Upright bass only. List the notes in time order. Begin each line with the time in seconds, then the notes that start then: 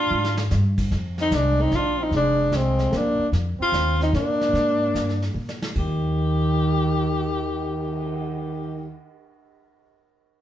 0.11 G#2
0.51 G2
0.91 F2
1.31 C2
1.71 A#1
2.11 F1
2.52 C2
2.92 A#1
3.19 muted upright bass stroke
3.32 F2
3.59 muted upright bass stroke
3.72 D#2
4.13 A#2
4.53 G#2
4.94 G2
5.34 A#2
5.76 D#2